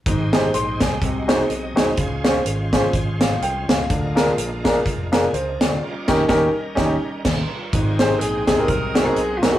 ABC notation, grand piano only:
X:1
M:4/4
L:1/16
Q:"Swing" 1/4=125
K:Ab
V:1 name="Grand piano"
z2 [EGAc] z c'2 a4 [E_GAc] z3 [EGAc] z | z2 [DFAc] z3 [DFAc] z3 f2 g2 f2- | f2 [=DFAB] z3 [DFAB] z3 [DFAB] z c2 =d2 | z2 [DEGB]2 [DEGB]2 z2 [DEGd]2 z6 |
z2 [CEGA] z3 [CEGA] [CEGB] z2 [CE_GA] [CEGB] z2 [CEGB] [CEGA] |]
V:2 name="Grand piano" clef=bass
A,,6 z2 C,6 z2 | D,6 z8 z2 | =D,6 z8 z2 | z16 |
A,,6 z2 C,6 z2 |]